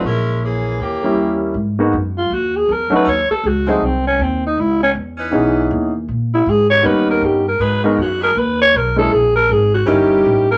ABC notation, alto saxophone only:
X:1
M:4/4
L:1/8
Q:"Swing" 1/4=159
K:G#m
V:1 name="Alto saxophone"
z8 | z3 ^E F G A B | c =A F D =C ^C =C _E | E C z6 |
z E G c B A =G A | B D F A B c A =A | G A G F =G3 A |]